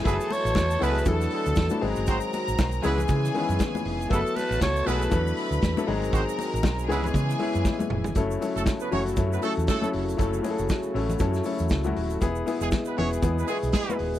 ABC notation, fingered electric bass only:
X:1
M:4/4
L:1/16
Q:"Swing 16ths" 1/4=118
K:F#m
V:1 name="Fingered electric bass" clef=bass
F,,, z2 A,,, E,,2 C,,2 E,,2 z D,, E,, z G,,, =G,,, | G,,, z2 A,,, B,,,2 C,,2 C,2 z F,, z2 ^E,,,2 | F,,, z2 A,,, C,,2 B,,,2 E,,2 z D,, E,, z G,,, =G,,, | G,,, z2 A,,, B,,,2 C,,2 C,2 z F,, z2 ^E,,,2 |
F,,,2 z F,,, z2 F,,,2 F,,2 z E,, z2 ^E,,,2 | F,,,2 z F,,, z2 A,,,2 F,,2 z E,, C,,2 ^D,,,2 | E,,,2 z E,,, z2 E,,,2 E,,2 z B,,, z2 ^D,,,2 |]